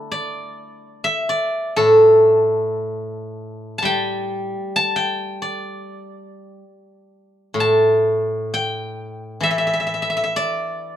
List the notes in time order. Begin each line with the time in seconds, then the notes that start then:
Already playing: D3 A3 D4 E4 A4
0.11 D5
1.04 E5
1.29 D5
1.76 A2 A4
3.78 A5
3.82 G3 G5
4.76 A5
4.96 G5
5.42 D5
7.54 A2
7.60 A5
8.54 G5
9.41 E3 E5
9.51 E5
9.58 E5
9.67 E5
9.73 E5
9.80 E5
9.87 E5
9.94 E5
10.02 E5
10.10 E5
10.17 E5
10.24 E5
10.36 D5